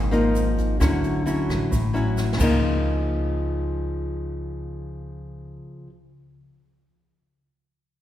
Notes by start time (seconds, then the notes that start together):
Already playing: G#1 G#2
0.11 F3 A#3 D#4, closed hi-hat, shaker
0.35 closed hi-hat, shaker
0.58 kick, closed hi-hat, shaker
0.80 D2 D3 F#3 C#4 E4, kick, cross-stick, closed hi-hat, shaker
1.04 closed hi-hat, shaker
1.26 F#3 C#4 E4, closed hi-hat, shaker
1.49 A1, kick, cross-stick, closed hi-hat, shaker
1.71 A1 A2, kick, closed hi-hat, shaker
1.93 F#3 C#4 E4, closed hi-hat, shaker
2.17 snare, shaker
2.33 snare
2.37 C#2 C#3 F3 A#3, kick, crash, shaker
2.43 D#4